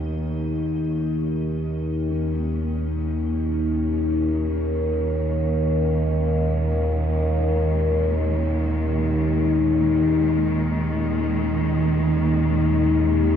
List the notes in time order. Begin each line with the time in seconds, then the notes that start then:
Already playing: D#2 B2 D#3 A3 C#4 D#5
2.14 D#2 A#2 D#3
3.37 D#3
5.92 G#3